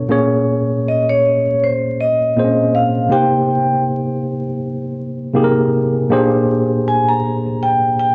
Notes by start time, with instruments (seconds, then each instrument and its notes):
Already playing: tine electric piano B2 B3 D4 A4 C#5
0.08 tine electric piano A#2 A#3 C#4 G#4 C#5
0.88 vibraphone D#5
1.09 vibraphone C#5
1.64 vibraphone C5
2.00 vibraphone D#5
2.36 tine electric piano A#2 A#3 C4 G#4 C5
2.44 tine electric piano C#4
2.75 vibraphone F5
3.09 tine electric piano C3 A#3 D#4 G4 C5, vibraphone G5
5.34 tine electric piano C3 A#3 D#4 G4 G#4
5.44 tine electric piano A#4
6.09 tine electric piano A#2 A#3 D4 G4 G#4 C5
6.88 vibraphone G#5
7.09 vibraphone A#5
7.63 vibraphone G5
7.99 vibraphone G5